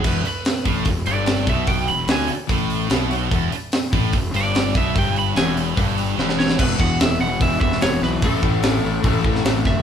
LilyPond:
<<
  \new Staff \with { instrumentName = "Lead electric guitar" } { \time 4/4 \key a \major \tempo 4 = 147 b'8 b'4 r4 d''4 e''8 | g''8 b''8 gis''8 r2 r8 | r2 r8 d''4 e''8 | g''8 b''8 gis''8 r2 cis''8 |
b'8 fis''8 e''8 fis''8 e''8 e''8 cis''8 b'8 | a'2. r8 e''8 | }
  \new Staff \with { instrumentName = "Overdriven electric guitar" } { \clef bass \time 4/4 \key a \major r1 | r1 | r1 | r1 |
<e, b, e>8 <e, b, e>8 <e, b, e>8 <e, b, e>8 <e, b, e>8 <e, b, e>8 <e, b, e>8 <e, b, e>8 | <a, e a>8 <a, e a>8 <a, e a>8 <a, e a>8 <a, e a>8 <a, e a>8 <a, e a>8 <a, e a>8 | }
  \new Staff \with { instrumentName = "Overdriven electric guitar" } { \clef bass \time 4/4 \key a \major e,8 r4 a,8 e,8 g,4 b,8~ | b,8 e,8 d8 r8 a,4 b,4 | e,8 r4 a,8 e,8 g,4 b,8 | g,4 e,4 g,4 e,4 |
<e, b, e>2 <e, b, e>2 | <a, e a>2 <a, e a>2 | }
  \new Staff \with { instrumentName = "Distorted electric guitar" } { \clef bass \time 4/4 \key a \major e,8 r4 a,8 e,8 g,4 b,8~ | b,8 e,8 d8 r8 a,4 b,4 | e,8 r4 a,8 e,8 g,4 b,8 | g,4 e,4 g,4 e,4 |
r1 | r1 | }
  \new Staff \with { instrumentName = "Fingered electric bass" } { \clef bass \time 4/4 \key a \major e,,8 r4 a,,8 e,,8 g,,4 b,,8~ | b,,8 e,,8 d,8 r8 a,,4 b,,4 | e,,8 r4 a,,8 e,,8 g,,4 b,,8 | g,,4 e,,4 g,,4 e,,4 |
e,,8 e,,8 e,,8 e,,8 e,,8 e,,8 e,,8 b,,8 | a,,8 a,,8 a,,8 a,,8 a,,8 a,,8 a,,8 fis,,8 | }
  \new DrumStaff \with { instrumentName = "Drums" } \drummode { \time 4/4 <cymc hho bd>8 hho8 <hho sn>8 <hho bd>8 <hho bd>8 hho8 <hho sn>8 <hho bd>8 | <hho bd>8 hho8 <hho sn>8 hho8 <hho bd>8 hho8 <hho sn>8 hho8 | <hho bd>8 hho8 <hho sn>8 <hho bd>8 <hho bd>8 hho8 <hho sn>8 <hho bd>8 | <hho bd>8 hho8 <hho sn>8 hho8 <hho bd>8 hho8 sn16 sn16 sn16 sn16 |
<cymc bd>8 bd8 <hho sn>4 <hho bd>8 bd16 sn16 <hho sn>8 sn8 | <hho bd>8 bd8 <hho sn>4 <hho bd>8 bd16 sn16 <hho sn>8 <bd sn>8 | }
>>